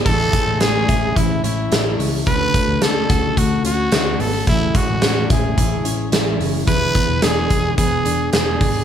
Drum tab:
CC |x-------|--------|--------|--------|
HH |-xxxxxxo|xxxxxxxo|xxxxxxxo|xxxxxxxo|
SD |--o---o-|--o---o-|--o---o-|--o---o-|
BD |oo-oo---|oo-oo---|oo-oo---|oo-oo--o|